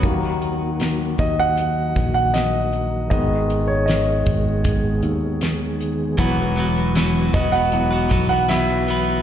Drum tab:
HH |x-x-x-x-x-x-x-x-|x-x-x-x-x-x-x-x-|x-x-x-xxx-x-x-x-|
SD |----o-------o---|----o-------o---|----o-------o---|
BD |o-----o---o-----|o-----o-o-------|o-----o---o-----|